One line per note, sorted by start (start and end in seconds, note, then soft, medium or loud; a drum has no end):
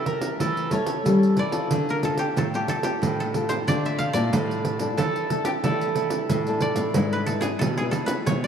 0.00 0.38 E3 medium
0.00 0.52 C#4 medium
0.00 0.52 E4 medium
0.00 0.67 A4 medium
0.06 0.41 A#4 medium
0.06 pandeiro medium
0.21 pandeiro medium
0.40 0.69 E3 medium
0.40 1.03 A3 medium
0.40 0.72 A4 medium
0.40 pandeiro medium
0.57 pandeiro soft
0.71 1.02 A3 medium
0.71 1.00 C#4 medium
0.71 1.01 E4 medium
0.71 1.01 A4 medium
0.71 1.19 C#5 medium
0.71 pandeiro medium
0.86 pandeiro medium
1.05 1.68 E3 medium
1.05 1.35 G3 medium
1.05 1.50 C#4 medium
1.05 1.50 E4 medium
1.05 1.50 A4 medium
1.05 pandeiro medium
1.23 pandeiro soft
1.37 1.67 E3 medium
1.37 2.99 D5 medium
1.37 pandeiro medium
1.52 1.98 C4 medium
1.52 1.98 F4 medium
1.52 1.98 A4 medium
1.52 pandeiro medium
1.71 2.27 D3 medium
1.71 2.34 D3 medium
1.71 pandeiro medium
1.89 2.11 A#4 medium
1.89 pandeiro soft
2.03 2.47 C4 medium
2.03 2.48 F4 medium
2.03 2.48 A4 medium
2.03 2.38 A4 medium
2.03 pandeiro medium
2.18 2.55 G4 medium
2.18 pandeiro medium
2.36 2.99 A2 medium
2.36 2.65 A2 medium
2.36 2.69 A4 medium
2.36 pandeiro medium
2.54 3.14 C4 medium
2.54 3.14 F4 medium
2.54 2.84 G4 medium
2.54 3.14 A4 medium
2.54 pandeiro soft
2.68 3.20 A4 medium
2.68 pandeiro medium
2.83 4.88 G4 medium
2.83 pandeiro medium
3.02 3.58 A2 medium
3.02 3.65 D3 medium
3.02 pandeiro medium
3.20 5.11 A4 medium
3.20 pandeiro soft
3.34 3.54 C4 medium
3.34 3.54 F4 medium
3.34 3.55 A4 medium
3.34 pandeiro medium
3.49 3.55 C5 medium
3.49 pandeiro medium
3.67 4.31 A2 medium
3.67 4.09 D3 medium
3.67 3.99 C4 soft
3.67 3.99 F4 medium
3.67 4.00 A4 medium
3.67 4.13 D5 loud
3.67 pandeiro medium
3.85 4.05 E5 medium
3.85 pandeiro soft
3.99 5.43 F5 loud
3.99 pandeiro medium
4.13 4.29 A#2 loud
4.13 4.60 D4 medium
4.13 4.60 E4 medium
4.13 4.60 A4 medium
4.13 5.73 D5 medium
4.13 pandeiro medium
4.33 4.89 A2 loud
4.33 4.96 A3 medium
4.33 pandeiro medium
4.51 pandeiro soft
4.65 pandeiro medium
4.79 5.26 D4 medium
4.79 5.26 E4 medium
4.79 5.26 A4 medium
4.79 pandeiro medium
4.98 5.27 E3 medium
4.98 5.62 E3 medium
4.98 5.44 A4 loud
4.98 pandeiro medium
5.16 pandeiro soft
5.30 5.51 D4 medium
5.30 5.51 E4 medium
5.30 5.51 A4 medium
5.30 pandeiro medium
5.45 5.50 G4 medium
5.45 pandeiro medium
5.63 6.20 E3 medium
5.63 6.27 A3 medium
5.63 5.84 D4 medium
5.63 5.84 E4 medium
5.63 6.42 A4 medium
5.63 5.84 A4 medium
5.63 pandeiro medium
5.81 pandeiro soft
5.95 6.40 D4 medium
5.95 6.40 E4 medium
5.95 6.41 A4 medium
5.95 pandeiro medium
6.10 pandeiro medium
6.29 6.72 A2 loud
6.29 6.92 E3 medium
6.29 pandeiro medium
6.47 6.91 D4 medium
6.47 6.91 E4 medium
6.47 6.91 A4 medium
6.47 pandeiro soft
6.60 8.22 D5 loud
6.60 pandeiro medium
6.76 6.91 A2 medium
6.76 pandeiro medium
6.94 7.51 G#2 loud
6.94 7.58 G#3 medium
6.94 7.15 D4 medium
6.94 7.15 E4 medium
6.94 7.16 B4 medium
6.94 pandeiro medium
7.12 7.19 B4 medium
7.12 pandeiro soft
7.26 7.59 D4 medium
7.26 7.59 E4 medium
7.26 7.47 A4 medium
7.26 7.60 B4 medium
7.26 pandeiro medium
7.41 7.65 G#4 medium
7.41 pandeiro medium
7.59 7.89 B2 medium
7.59 7.83 A4 medium
7.59 pandeiro medium
7.63 8.24 G#3 medium
7.77 8.39 D4 medium
7.77 8.40 E4 medium
7.77 7.83 G#4 medium
7.77 pandeiro soft
7.82 8.40 B4 medium
7.91 8.47 A4 medium
7.91 pandeiro medium
8.06 8.12 B4 medium
8.06 pandeiro medium
8.26 8.47 B2 loud
8.26 8.47 G#3 medium
8.26 8.47 C#5 medium
8.26 pandeiro medium
8.44 8.47 D5 medium